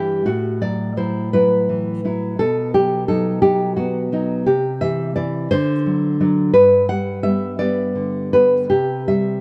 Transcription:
Already playing: G2 E3 G3 E4 G4
0.26 A2 F#4
0.62 F#3 D5
0.97 F#3 E4 C5
1.33 F#3 E4 B4
1.69 E3
2.05 F#3 E4
2.39 B2 A4
2.74 F#3 G4
3.08 F#3 D#4 A4
3.42 F#3 D#4 G4
3.76 B3 F#4
4.12 F#3 D#4
4.46 C3 G4
4.81 E3 E5
5.16 E3 E4 D5
5.51 D3 C5
5.86 F#3
6.20 F#3 D4
6.54 G2 B4
6.89 G3 F#5
7.23 G3 B3 E5
7.58 G3 B3 D5
7.95 D3
8.33 G3 B3 B4
8.70 C3 G4
9.08 G3 E5

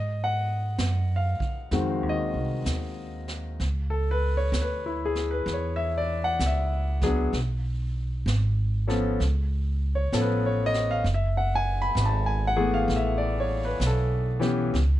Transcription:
Already playing: G#2 D#5
0.24 F#5
0.78 F#2, snare, hi-hat pedal
1.16 F5
1.40 muted upright bass stroke, kick
1.71 F2 D#3 G#3 C4 F#4, brush sweep, snare
2.02 D#2
2.09 D#5
2.34 C2
2.65 D#2, snare, hi-hat pedal
3.28 snare
3.60 C#2, brush sweep, snare
3.90 A4
4.11 B4
4.37 C#5
4.52 D2, snare, hi-hat pedal
4.62 B4
4.86 E4
5.05 G#4
5.15 snare
5.31 B4
5.46 E2, brush sweep, snare
5.53 C#5
5.76 E5
5.98 D5
6.24 F#5
6.39 C#2, snare, hi-hat pedal
6.46 E5
7.01 F#3 B3 D4 G#4, kick, snare
7.33 B1, brush sweep, snare
8.26 G#1, snare, hi-hat pedal
8.87 F3 B3 C#4 A4, snare
9.20 C#2, brush sweep, snare
9.95 C#5
10.12 A1 F3 B3 C#4 A4, snare, hi-hat pedal
10.22 B4
10.46 C#5
10.66 D#5
10.74 snare
10.91 F5
11.04 F#1, brush sweep, snare
11.14 E5
11.37 F#5
11.55 G#5
11.82 B5
11.95 G#1, snare, hi-hat pedal
12.05 A5
12.26 G#5
12.47 F#5
12.56 E3 A3 B3 G#4
12.74 F5
12.88 A1, brush sweep, snare
12.96 E5
13.18 D5
13.40 C#5
13.65 B4
13.80 B1, snare, hi-hat pedal
13.86 A4
14.40 E3 B3 C#4 G4, snare
14.74 C#2, brush sweep, snare

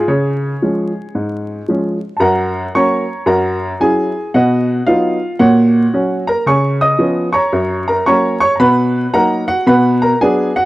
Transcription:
0.08 C#3 G#4 C#5
0.62 F3 G#3 C#4
1.15 G#2
1.68 F3 G#3 C#4
2.17 F#2 A5 A#5
2.22 A#4 F#5
2.75 F#3 A#3 C#4 C#5 A#5 C#6
3.26 F#2 A#4 F#5 A#5
3.80 F#3 C#4 E4 G#4 G#5
4.34 B2 F#4 D#5 F#5
4.86 F#3 B3 D#4 F4 F5
5.39 A#2 F#4 C#5 F#5
5.94 F#3 C#4
6.27 A#4 A#5
6.46 C#3 C#5 G#5 C#6
6.81 D#5 D#6
6.99 F3 B3 C#4
7.33 C#5 A#5 C#6
7.53 F#2
7.88 A#4 A#5
8.06 F#3 A#3 C#4 C#5 A#5 C#6
8.40 C#5 C#6
8.56 B2 A#5
8.60 B4 F#5 B5
9.13 F#3 A#3 D#4 A#4 F#5 A#5
9.48 F#4 F#5
9.67 B2 B4 F#5 B5
10.02 A#4 A#5
10.21 F#3 B3 D4 G#4 G#5
10.56 F#4 F#5

